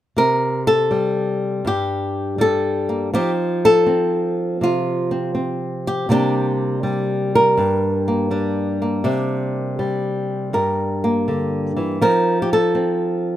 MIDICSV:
0, 0, Header, 1, 2, 480
1, 0, Start_track
1, 0, Tempo, 739827
1, 104, Time_signature, 4, 2, 24, 8
1, 8672, End_track
2, 0, Start_track
2, 0, Title_t, "Nylon-string guitar"
2, 0, Program_c, 0, 24
2, 107, Note_on_c, 0, 48, 70
2, 116, Note_on_c, 0, 70, 100
2, 433, Note_off_c, 0, 70, 0
2, 436, Note_on_c, 0, 69, 94
2, 589, Note_on_c, 0, 55, 60
2, 1067, Note_off_c, 0, 48, 0
2, 1068, Note_on_c, 0, 43, 58
2, 1070, Note_off_c, 0, 69, 0
2, 1085, Note_on_c, 0, 67, 89
2, 1544, Note_off_c, 0, 55, 0
2, 1546, Note_on_c, 0, 55, 58
2, 1556, Note_off_c, 0, 67, 0
2, 1564, Note_on_c, 0, 69, 98
2, 1875, Note_on_c, 0, 58, 42
2, 2029, Note_off_c, 0, 43, 0
2, 2030, Note_off_c, 0, 58, 0
2, 2032, Note_off_c, 0, 55, 0
2, 2034, Note_on_c, 0, 53, 77
2, 2036, Note_off_c, 0, 69, 0
2, 2038, Note_on_c, 0, 60, 48
2, 2041, Note_on_c, 0, 67, 93
2, 2043, Note_on_c, 0, 63, 49
2, 2145, Note_off_c, 0, 67, 0
2, 2368, Note_on_c, 0, 69, 92
2, 2505, Note_off_c, 0, 60, 0
2, 2507, Note_on_c, 0, 60, 59
2, 2992, Note_on_c, 0, 48, 57
2, 2996, Note_off_c, 0, 63, 0
2, 3007, Note_on_c, 0, 65, 79
2, 3313, Note_off_c, 0, 60, 0
2, 3316, Note_on_c, 0, 60, 45
2, 3466, Note_off_c, 0, 60, 0
2, 3468, Note_on_c, 0, 60, 57
2, 3478, Note_off_c, 0, 69, 0
2, 3811, Note_on_c, 0, 67, 81
2, 3943, Note_off_c, 0, 48, 0
2, 3951, Note_on_c, 0, 48, 73
2, 3952, Note_off_c, 0, 53, 0
2, 3957, Note_on_c, 0, 55, 53
2, 3958, Note_off_c, 0, 65, 0
2, 3958, Note_off_c, 0, 67, 0
2, 3959, Note_off_c, 0, 60, 0
2, 3962, Note_on_c, 0, 58, 51
2, 3965, Note_on_c, 0, 62, 54
2, 3968, Note_on_c, 0, 67, 89
2, 4430, Note_off_c, 0, 55, 0
2, 4432, Note_on_c, 0, 55, 66
2, 4761, Note_off_c, 0, 67, 0
2, 4771, Note_on_c, 0, 70, 85
2, 4910, Note_off_c, 0, 48, 0
2, 4914, Note_on_c, 0, 43, 62
2, 5233, Note_off_c, 0, 58, 0
2, 5241, Note_on_c, 0, 58, 46
2, 5385, Note_off_c, 0, 62, 0
2, 5387, Note_off_c, 0, 55, 0
2, 5389, Note_on_c, 0, 55, 57
2, 5393, Note_on_c, 0, 62, 44
2, 5713, Note_off_c, 0, 58, 0
2, 5721, Note_on_c, 0, 58, 43
2, 5861, Note_off_c, 0, 62, 0
2, 5865, Note_on_c, 0, 48, 76
2, 5869, Note_on_c, 0, 62, 62
2, 5872, Note_off_c, 0, 43, 0
2, 6202, Note_off_c, 0, 70, 0
2, 6349, Note_off_c, 0, 55, 0
2, 6351, Note_on_c, 0, 55, 61
2, 6827, Note_off_c, 0, 48, 0
2, 6833, Note_on_c, 0, 43, 59
2, 6838, Note_on_c, 0, 70, 55
2, 7154, Note_off_c, 0, 58, 0
2, 7162, Note_on_c, 0, 58, 56
2, 7317, Note_on_c, 0, 50, 54
2, 7631, Note_off_c, 0, 50, 0
2, 7633, Note_on_c, 0, 52, 56
2, 7775, Note_off_c, 0, 70, 0
2, 7789, Note_off_c, 0, 62, 0
2, 7790, Note_off_c, 0, 52, 0
2, 7791, Note_off_c, 0, 43, 0
2, 7793, Note_off_c, 0, 55, 0
2, 7794, Note_off_c, 0, 58, 0
2, 7795, Note_on_c, 0, 53, 74
2, 7798, Note_on_c, 0, 60, 49
2, 7800, Note_on_c, 0, 70, 84
2, 7803, Note_on_c, 0, 63, 48
2, 8056, Note_off_c, 0, 70, 0
2, 8059, Note_on_c, 0, 67, 61
2, 8116, Note_off_c, 0, 67, 0
2, 8129, Note_on_c, 0, 69, 84
2, 8267, Note_off_c, 0, 60, 0
2, 8270, Note_on_c, 0, 60, 58
2, 8672, Note_off_c, 0, 53, 0
2, 8672, Note_off_c, 0, 60, 0
2, 8672, Note_off_c, 0, 63, 0
2, 8672, Note_off_c, 0, 69, 0
2, 8672, End_track
0, 0, End_of_file